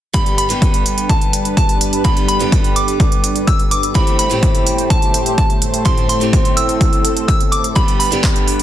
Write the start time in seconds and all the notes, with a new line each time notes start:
0.13 G2 D3 G3 B3 D4 G4 B4 B5, kick, closed hi-hat
0.26 closed hi-hat
0.38 B5, closed hi-hat
0.49 G2 D3 G3 B3 G4, closed hi-hat
0.62 kick, closed hi-hat
0.74 closed hi-hat
0.86 closed hi-hat
0.98 closed hi-hat
1.09 A5, kick, closed hi-hat
1.21 closed hi-hat
1.33 closed hi-hat
1.45 closed hi-hat
1.57 A5, kick, closed hi-hat
1.69 closed hi-hat
1.81 closed hi-hat
1.93 closed hi-hat
2.04 G2 D3 G3 B3 G4 B5, kick, closed hi-hat
2.17 closed hi-hat
2.28 B5, closed hi-hat
2.39 G2 D3 G3 B3 G4, closed hi-hat
2.52 kick, closed hi-hat
2.64 closed hi-hat
2.76 D6, closed hi-hat
2.88 closed hi-hat
3.00 kick, closed hi-hat
3.12 closed hi-hat
3.24 closed hi-hat
3.36 closed hi-hat
3.47 E6, kick, closed hi-hat
3.59 closed hi-hat
3.71 D6, closed hi-hat
3.83 closed hi-hat
3.94 A2 E3 A3 C4 G4 C5 B5, kick, closed hi-hat
4.07 closed hi-hat
4.19 B5, closed hi-hat
4.29 A2 E3 A3 C4 G4, closed hi-hat
4.43 kick, closed hi-hat
4.55 closed hi-hat
4.67 closed hi-hat
4.78 closed hi-hat
4.90 A5, kick, closed hi-hat
5.02 closed hi-hat
5.14 closed hi-hat
5.26 closed hi-hat
5.38 A5, kick, closed hi-hat
5.50 closed hi-hat
5.62 closed hi-hat
5.74 closed hi-hat
5.85 A2 E3 A3 C4 G4 A4 C6, kick, closed hi-hat
5.98 closed hi-hat
6.09 C6, closed hi-hat
6.20 A2 E3 A3 C4 G4, closed hi-hat
6.33 kick, closed hi-hat
6.45 closed hi-hat
6.57 E6, closed hi-hat
6.69 closed hi-hat
6.81 kick, closed hi-hat
6.93 closed hi-hat
7.05 closed hi-hat
7.17 closed hi-hat
7.28 E6, kick, closed hi-hat
7.40 closed hi-hat
7.52 D6, closed hi-hat
7.64 closed hi-hat
7.75 G2 D3 G3 B3 D4 G4 B4 B5, kick, closed hi-hat
7.88 closed hi-hat
7.99 B5, open hi-hat
8.11 G2 D3 G3 B3 G4, closed hi-hat
8.24 kick, clap, closed hi-hat
8.36 closed hi-hat
8.48 open hi-hat
8.60 closed hi-hat